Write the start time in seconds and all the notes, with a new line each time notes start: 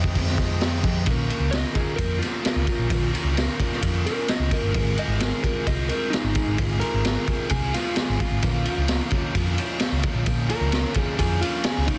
Already playing: F2 C3 F3 G#3 C4
0.04 kick
0.15 F2 C3 F3 G#3 C4, kick, open hi-hat
0.27 snare
0.37 F2 C3 F3 G#3 C4, kick, snare, open hi-hat
0.61 F2 C3 F3 G#3 C4, snare, open hi-hat
0.83 F2 C3 F3 G#3 C4, kick, open hi-hat
1.06 A#1 A#3 C#4 F4 A#4, kick, ride
1.28 A#3 C#4 F4 A#4, ride
1.40 C#2
1.51 A#3 C#4 F4 A#4 D#5, snare, ride
1.74 A#3 C#4 F4 G#4 A#4, kick, ride
1.96 F2 A#3 C#4 F4 A#4, kick, ride
2.19 A#3 C#4 F4 A#4, ride
2.23 snare
2.43 A#3 C#4 F4 A#4, snare, ride
2.56 C#2
2.67 A#3 C#4 F4 A#4, kick, ride
2.79 A#1
2.89 A#3 C#4 F4 A#4, kick, ride
3.14 A#3 C#4 F4 A#4, ride
3.24 C#2
3.35 A#3 C#4 F4 A#4, snare, ride
3.59 A#3 C#4 F4 A#4, kick, ride
3.73 snare
3.80 F2 A#3 C#4 F4 A#4, kick, ride
4.05 A#3 C#4 F4 A#4, snare, ride
4.27 A#3 C#4 F4 A#4 D#5, snare, ride
4.40 C#2
4.51 A#3 C#4 F4 A#4, kick, ride
4.63 G1
4.72 G#1 G#3 C4 F4 G#4, kick, ride
4.76 A#4
4.96 G#3 C4 F4 G#4 D#5, ride
5.08 G#1
5.20 G#3 C4 F4 G#4 A#4, snare, ride
5.43 G#3 C4 F4 G#4 A#4, kick, ride
5.66 C2 G#3 C4 F4 G#4 D#5, kick, ride
5.88 G#3 C4 F4 G#4 A#4, ride
6.10 G#3 C4 D#4 F4 G#4, snare, ride
6.24 G#1
6.35 G#3 C4 F4 G#4, kick, ride
6.47 G#1
6.58 G#3 C4 F4 G#4, kick, ride
6.80 G#3 C4 F4 A#4, ride
6.84 G#4
6.94 G#1
7.05 G#3 C4 F4 G#4, snare, ride
7.27 G#3 C4 F4 G#4, kick, ride
7.49 C2 G#3 C4 F4 G#4, kick, ride
7.72 G#3 C4 F4 G#4, snare, ride
7.95 G#3 C4 F4 G#4, snare, ride
8.10 G#1
8.19 G#3 C4 F4 G#4, kick, ride
8.31 G#1
8.42 A#1 A#2 F3 A#3 C#4 F4, kick, ride
8.65 A#2 F3 A#3 C#4 F4, ride
8.78 C#2
8.88 A#2 F3 A#3 C#4 F4, snare, ride
9.10 A#2 F3 A#3 C#4 F4, kick, ride
9.34 F2 A#2 F3 A#3 C#4 F4, kick, ride
9.58 A#2 F3 A#3 C#4 F4, ride
9.79 A#2 F3 A#3 C#4 F4, snare, ride
9.92 C#2
10.03 A#2 F3 A#3 C#4 F4, kick, ride
10.14 A#1
10.25 A#1 A#2 F3 A#3 C#4 F4, kick, ride
10.47 A#2 F3 A#3 C#4 F4 A#4, ride
10.61 C#2
10.71 A#2 F3 A#3 C#4 F4, snare, ride
10.94 A#2 F3 A#3 C#4 F4, kick, ride
10.98 G#4
11.16 F2 A#2 F3 A#3 C#4 F4 G#4, kick, ride
11.40 A#2 F3 A#3 C#4 F4, ride
11.64 A#2 F3 A#3 C#4 F4 G#4, snare, ride
11.78 C#2
11.86 A#2 F3 A#3 C#4 D#4 F4, kick, ride